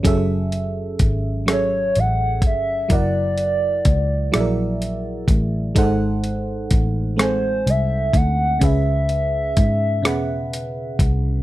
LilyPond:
<<
  \new Staff \with { instrumentName = "Soft synth lead" } { \time 6/8 \key fis \minor \tempo 4. = 42 r4. cis''8 fis''8 e''8 | d''2 r4 | r4. bis'8 e''8 fis''8 | e''2~ e''8 r8 | }
  \new Staff \with { instrumentName = "FM electric piano" } { \time 6/8 \key fis \minor <fis cis' gis' a' e''>4. <fis cis' gis' a' e''>4. | <fis e' ais' d'' fis''>4. <fis e' gis' ais' d'' e''>4. | <gis dis' a' bis' fis''>4. <gis bis a' bis' gis''>4. | <cis cis' gis' b' e''>4. <b, cis' gis' b' fis''>4. | }
  \new Staff \with { instrumentName = "Picked electric bass" } { \clef bass \time 6/8 \key fis \minor fis,,4 gis,,4 a,,8 g,,8 | fis,,4 cis,8 ais,,4 a,,8 | gis,,4 a,,4 bis,,8 d,8 | cis,4 gis,8 e,4 bis,,8 | }
  \new DrumStaff \with { instrumentName = "Drums" } \drummode { \time 6/8 <hh bd>8 hh8 <hh bd>8 <hh ss>8 hh8 <hh bd>8 | <hh bd>8 hh8 <hh bd>8 <hh ss>8 hh8 <hh bd>8 | <hh bd>8 hh8 <hh bd>8 <hh ss>8 hh8 <hh bd>8 | <hh bd>8 hh8 <hh bd>8 <hh ss>8 hh8 <hh bd>8 | }
>>